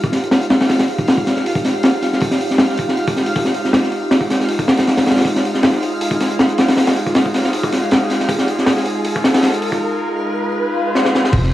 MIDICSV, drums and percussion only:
0, 0, Header, 1, 2, 480
1, 0, Start_track
1, 0, Key_signature, -4, "minor"
1, 0, Tempo, 379747
1, 882, Time_signature, 4, 2, 24, 8
1, 14581, End_track
2, 0, Start_track
2, 0, Title_t, "Drums"
2, 46, Note_on_c, 9, 36, 88
2, 154, Note_on_c, 9, 38, 45
2, 163, Note_on_c, 9, 46, 69
2, 173, Note_off_c, 9, 36, 0
2, 280, Note_off_c, 9, 38, 0
2, 290, Note_off_c, 9, 46, 0
2, 296, Note_on_c, 9, 42, 39
2, 396, Note_on_c, 9, 38, 96
2, 401, Note_on_c, 9, 46, 80
2, 422, Note_off_c, 9, 42, 0
2, 522, Note_off_c, 9, 38, 0
2, 522, Note_on_c, 9, 42, 41
2, 528, Note_off_c, 9, 46, 0
2, 631, Note_on_c, 9, 46, 73
2, 634, Note_on_c, 9, 38, 102
2, 649, Note_off_c, 9, 42, 0
2, 758, Note_off_c, 9, 46, 0
2, 761, Note_off_c, 9, 38, 0
2, 764, Note_on_c, 9, 46, 72
2, 768, Note_on_c, 9, 38, 100
2, 876, Note_off_c, 9, 38, 0
2, 876, Note_on_c, 9, 38, 99
2, 879, Note_off_c, 9, 46, 0
2, 879, Note_on_c, 9, 46, 83
2, 1001, Note_off_c, 9, 38, 0
2, 1001, Note_on_c, 9, 38, 99
2, 1003, Note_off_c, 9, 46, 0
2, 1003, Note_on_c, 9, 46, 71
2, 1112, Note_off_c, 9, 46, 0
2, 1112, Note_on_c, 9, 46, 59
2, 1127, Note_off_c, 9, 38, 0
2, 1238, Note_off_c, 9, 46, 0
2, 1244, Note_on_c, 9, 36, 98
2, 1359, Note_on_c, 9, 46, 80
2, 1370, Note_on_c, 9, 38, 112
2, 1371, Note_off_c, 9, 36, 0
2, 1485, Note_on_c, 9, 36, 82
2, 1486, Note_off_c, 9, 46, 0
2, 1496, Note_off_c, 9, 38, 0
2, 1600, Note_on_c, 9, 38, 55
2, 1605, Note_on_c, 9, 46, 58
2, 1611, Note_off_c, 9, 36, 0
2, 1723, Note_off_c, 9, 38, 0
2, 1723, Note_on_c, 9, 38, 43
2, 1731, Note_off_c, 9, 46, 0
2, 1847, Note_on_c, 9, 46, 80
2, 1850, Note_off_c, 9, 38, 0
2, 1964, Note_on_c, 9, 36, 88
2, 1973, Note_off_c, 9, 46, 0
2, 2080, Note_on_c, 9, 46, 69
2, 2082, Note_on_c, 9, 38, 46
2, 2090, Note_off_c, 9, 36, 0
2, 2206, Note_off_c, 9, 46, 0
2, 2208, Note_off_c, 9, 38, 0
2, 2314, Note_on_c, 9, 46, 84
2, 2323, Note_on_c, 9, 38, 115
2, 2440, Note_off_c, 9, 46, 0
2, 2449, Note_off_c, 9, 38, 0
2, 2553, Note_on_c, 9, 38, 38
2, 2558, Note_on_c, 9, 46, 61
2, 2680, Note_off_c, 9, 38, 0
2, 2684, Note_off_c, 9, 46, 0
2, 2692, Note_on_c, 9, 38, 46
2, 2786, Note_on_c, 9, 46, 83
2, 2801, Note_on_c, 9, 36, 114
2, 2819, Note_off_c, 9, 38, 0
2, 2913, Note_off_c, 9, 46, 0
2, 2920, Note_on_c, 9, 38, 50
2, 2927, Note_off_c, 9, 36, 0
2, 3042, Note_on_c, 9, 46, 69
2, 3046, Note_off_c, 9, 38, 0
2, 3168, Note_off_c, 9, 46, 0
2, 3168, Note_on_c, 9, 38, 42
2, 3264, Note_off_c, 9, 38, 0
2, 3264, Note_on_c, 9, 38, 111
2, 3278, Note_on_c, 9, 46, 87
2, 3390, Note_off_c, 9, 38, 0
2, 3400, Note_on_c, 9, 38, 50
2, 3404, Note_off_c, 9, 46, 0
2, 3507, Note_on_c, 9, 46, 75
2, 3525, Note_on_c, 9, 36, 88
2, 3527, Note_off_c, 9, 38, 0
2, 3633, Note_off_c, 9, 46, 0
2, 3646, Note_on_c, 9, 38, 45
2, 3651, Note_off_c, 9, 36, 0
2, 3755, Note_on_c, 9, 46, 55
2, 3772, Note_off_c, 9, 38, 0
2, 3881, Note_off_c, 9, 46, 0
2, 3886, Note_on_c, 9, 46, 78
2, 3889, Note_on_c, 9, 36, 97
2, 3999, Note_on_c, 9, 38, 48
2, 4012, Note_off_c, 9, 46, 0
2, 4015, Note_off_c, 9, 36, 0
2, 4123, Note_on_c, 9, 46, 63
2, 4125, Note_off_c, 9, 38, 0
2, 4242, Note_off_c, 9, 46, 0
2, 4242, Note_on_c, 9, 46, 73
2, 4246, Note_on_c, 9, 36, 98
2, 4363, Note_on_c, 9, 38, 48
2, 4369, Note_off_c, 9, 46, 0
2, 4372, Note_off_c, 9, 36, 0
2, 4478, Note_on_c, 9, 46, 61
2, 4489, Note_off_c, 9, 38, 0
2, 4604, Note_off_c, 9, 46, 0
2, 4609, Note_on_c, 9, 38, 35
2, 4716, Note_off_c, 9, 38, 0
2, 4716, Note_on_c, 9, 38, 105
2, 4725, Note_on_c, 9, 46, 81
2, 4843, Note_off_c, 9, 38, 0
2, 4844, Note_on_c, 9, 38, 50
2, 4852, Note_off_c, 9, 46, 0
2, 4952, Note_on_c, 9, 46, 59
2, 4970, Note_off_c, 9, 38, 0
2, 5079, Note_off_c, 9, 46, 0
2, 5194, Note_on_c, 9, 38, 94
2, 5198, Note_on_c, 9, 46, 78
2, 5317, Note_on_c, 9, 36, 86
2, 5320, Note_off_c, 9, 38, 0
2, 5325, Note_off_c, 9, 46, 0
2, 5437, Note_on_c, 9, 46, 66
2, 5440, Note_on_c, 9, 38, 59
2, 5443, Note_off_c, 9, 36, 0
2, 5563, Note_off_c, 9, 46, 0
2, 5566, Note_off_c, 9, 38, 0
2, 5566, Note_on_c, 9, 38, 44
2, 5668, Note_on_c, 9, 46, 82
2, 5692, Note_off_c, 9, 38, 0
2, 5794, Note_off_c, 9, 46, 0
2, 5800, Note_on_c, 9, 36, 92
2, 5915, Note_on_c, 9, 38, 104
2, 5925, Note_on_c, 9, 46, 78
2, 5927, Note_off_c, 9, 36, 0
2, 6031, Note_off_c, 9, 46, 0
2, 6031, Note_on_c, 9, 46, 70
2, 6042, Note_off_c, 9, 38, 0
2, 6046, Note_on_c, 9, 38, 100
2, 6158, Note_off_c, 9, 46, 0
2, 6158, Note_on_c, 9, 46, 67
2, 6163, Note_off_c, 9, 38, 0
2, 6163, Note_on_c, 9, 38, 91
2, 6284, Note_off_c, 9, 46, 0
2, 6285, Note_off_c, 9, 38, 0
2, 6285, Note_on_c, 9, 38, 94
2, 6289, Note_on_c, 9, 46, 75
2, 6398, Note_off_c, 9, 46, 0
2, 6398, Note_on_c, 9, 46, 66
2, 6402, Note_off_c, 9, 38, 0
2, 6402, Note_on_c, 9, 38, 90
2, 6456, Note_off_c, 9, 38, 0
2, 6456, Note_on_c, 9, 38, 91
2, 6463, Note_off_c, 9, 46, 0
2, 6463, Note_on_c, 9, 46, 60
2, 6525, Note_off_c, 9, 46, 0
2, 6525, Note_on_c, 9, 46, 70
2, 6528, Note_off_c, 9, 38, 0
2, 6528, Note_on_c, 9, 38, 81
2, 6578, Note_off_c, 9, 46, 0
2, 6578, Note_on_c, 9, 46, 69
2, 6582, Note_off_c, 9, 38, 0
2, 6582, Note_on_c, 9, 38, 90
2, 6635, Note_on_c, 9, 36, 102
2, 6642, Note_off_c, 9, 46, 0
2, 6642, Note_on_c, 9, 46, 80
2, 6708, Note_off_c, 9, 38, 0
2, 6762, Note_off_c, 9, 36, 0
2, 6768, Note_off_c, 9, 46, 0
2, 6773, Note_on_c, 9, 38, 54
2, 6890, Note_on_c, 9, 46, 64
2, 6899, Note_off_c, 9, 38, 0
2, 7009, Note_on_c, 9, 38, 42
2, 7016, Note_off_c, 9, 46, 0
2, 7115, Note_on_c, 9, 46, 83
2, 7120, Note_off_c, 9, 38, 0
2, 7120, Note_on_c, 9, 38, 111
2, 7234, Note_off_c, 9, 38, 0
2, 7234, Note_on_c, 9, 38, 49
2, 7241, Note_off_c, 9, 46, 0
2, 7360, Note_off_c, 9, 38, 0
2, 7364, Note_on_c, 9, 46, 69
2, 7490, Note_off_c, 9, 46, 0
2, 7595, Note_on_c, 9, 46, 88
2, 7722, Note_off_c, 9, 46, 0
2, 7722, Note_on_c, 9, 36, 92
2, 7841, Note_on_c, 9, 46, 73
2, 7844, Note_on_c, 9, 38, 44
2, 7848, Note_off_c, 9, 36, 0
2, 7967, Note_off_c, 9, 46, 0
2, 7970, Note_off_c, 9, 38, 0
2, 7971, Note_on_c, 9, 42, 40
2, 8075, Note_on_c, 9, 46, 73
2, 8080, Note_on_c, 9, 38, 107
2, 8098, Note_off_c, 9, 42, 0
2, 8201, Note_off_c, 9, 46, 0
2, 8201, Note_on_c, 9, 42, 42
2, 8206, Note_off_c, 9, 38, 0
2, 8315, Note_on_c, 9, 46, 80
2, 8323, Note_on_c, 9, 38, 90
2, 8327, Note_off_c, 9, 42, 0
2, 8442, Note_off_c, 9, 46, 0
2, 8447, Note_on_c, 9, 46, 83
2, 8449, Note_off_c, 9, 38, 0
2, 8451, Note_on_c, 9, 38, 95
2, 8550, Note_off_c, 9, 38, 0
2, 8550, Note_on_c, 9, 38, 100
2, 8569, Note_off_c, 9, 46, 0
2, 8569, Note_on_c, 9, 46, 84
2, 8676, Note_off_c, 9, 38, 0
2, 8684, Note_off_c, 9, 46, 0
2, 8684, Note_on_c, 9, 46, 79
2, 8689, Note_on_c, 9, 38, 100
2, 8798, Note_off_c, 9, 46, 0
2, 8798, Note_on_c, 9, 46, 61
2, 8816, Note_off_c, 9, 38, 0
2, 8925, Note_off_c, 9, 46, 0
2, 8931, Note_on_c, 9, 36, 95
2, 9036, Note_on_c, 9, 46, 82
2, 9040, Note_on_c, 9, 38, 102
2, 9058, Note_off_c, 9, 36, 0
2, 9162, Note_off_c, 9, 46, 0
2, 9166, Note_off_c, 9, 38, 0
2, 9174, Note_on_c, 9, 36, 100
2, 9279, Note_on_c, 9, 46, 73
2, 9283, Note_on_c, 9, 38, 61
2, 9300, Note_off_c, 9, 36, 0
2, 9401, Note_off_c, 9, 38, 0
2, 9401, Note_on_c, 9, 38, 50
2, 9406, Note_off_c, 9, 46, 0
2, 9518, Note_on_c, 9, 46, 91
2, 9528, Note_off_c, 9, 38, 0
2, 9644, Note_off_c, 9, 46, 0
2, 9650, Note_on_c, 9, 36, 99
2, 9763, Note_on_c, 9, 46, 75
2, 9768, Note_on_c, 9, 38, 45
2, 9776, Note_off_c, 9, 36, 0
2, 9889, Note_off_c, 9, 46, 0
2, 9894, Note_off_c, 9, 38, 0
2, 10000, Note_on_c, 9, 46, 87
2, 10009, Note_on_c, 9, 38, 119
2, 10126, Note_off_c, 9, 46, 0
2, 10135, Note_off_c, 9, 38, 0
2, 10236, Note_on_c, 9, 46, 68
2, 10237, Note_on_c, 9, 38, 47
2, 10362, Note_off_c, 9, 46, 0
2, 10364, Note_off_c, 9, 38, 0
2, 10367, Note_on_c, 9, 38, 43
2, 10475, Note_on_c, 9, 36, 116
2, 10479, Note_on_c, 9, 46, 89
2, 10493, Note_off_c, 9, 38, 0
2, 10599, Note_on_c, 9, 38, 57
2, 10601, Note_off_c, 9, 36, 0
2, 10606, Note_off_c, 9, 46, 0
2, 10717, Note_on_c, 9, 46, 66
2, 10726, Note_off_c, 9, 38, 0
2, 10843, Note_off_c, 9, 46, 0
2, 10850, Note_on_c, 9, 38, 42
2, 10952, Note_off_c, 9, 38, 0
2, 10952, Note_on_c, 9, 38, 115
2, 10953, Note_on_c, 9, 46, 83
2, 11079, Note_off_c, 9, 38, 0
2, 11080, Note_off_c, 9, 46, 0
2, 11084, Note_on_c, 9, 38, 55
2, 11194, Note_on_c, 9, 46, 67
2, 11210, Note_off_c, 9, 38, 0
2, 11320, Note_off_c, 9, 46, 0
2, 11432, Note_on_c, 9, 46, 78
2, 11559, Note_off_c, 9, 46, 0
2, 11577, Note_on_c, 9, 36, 92
2, 11681, Note_on_c, 9, 38, 100
2, 11689, Note_on_c, 9, 46, 83
2, 11703, Note_off_c, 9, 36, 0
2, 11808, Note_off_c, 9, 38, 0
2, 11809, Note_on_c, 9, 38, 106
2, 11810, Note_off_c, 9, 46, 0
2, 11810, Note_on_c, 9, 46, 85
2, 11913, Note_off_c, 9, 38, 0
2, 11913, Note_on_c, 9, 38, 100
2, 11914, Note_off_c, 9, 46, 0
2, 11914, Note_on_c, 9, 46, 72
2, 12039, Note_off_c, 9, 38, 0
2, 12040, Note_off_c, 9, 46, 0
2, 12052, Note_on_c, 9, 42, 42
2, 12158, Note_on_c, 9, 46, 74
2, 12178, Note_off_c, 9, 42, 0
2, 12284, Note_off_c, 9, 46, 0
2, 12286, Note_on_c, 9, 36, 93
2, 12413, Note_off_c, 9, 36, 0
2, 13843, Note_on_c, 9, 38, 60
2, 13966, Note_off_c, 9, 38, 0
2, 13966, Note_on_c, 9, 38, 66
2, 14089, Note_off_c, 9, 38, 0
2, 14089, Note_on_c, 9, 38, 89
2, 14210, Note_off_c, 9, 38, 0
2, 14210, Note_on_c, 9, 38, 76
2, 14317, Note_on_c, 9, 49, 95
2, 14320, Note_on_c, 9, 46, 93
2, 14323, Note_on_c, 9, 36, 102
2, 14336, Note_off_c, 9, 38, 0
2, 14443, Note_off_c, 9, 49, 0
2, 14446, Note_off_c, 9, 46, 0
2, 14449, Note_off_c, 9, 36, 0
2, 14450, Note_on_c, 9, 38, 52
2, 14576, Note_off_c, 9, 38, 0
2, 14581, End_track
0, 0, End_of_file